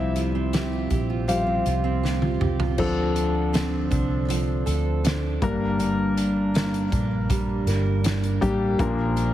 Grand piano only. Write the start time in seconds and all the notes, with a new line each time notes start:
Already playing: F3 G3 C4 E4 E5
1.28 F3 G3 C4 F4 F5
2.78 D3 F3 C4 D4 A4
5.42 G2 G3 A#3 D4 A#4
8.41 G3 A#3 D4 G4
8.78 A#2 F3 A#3 D4 A#4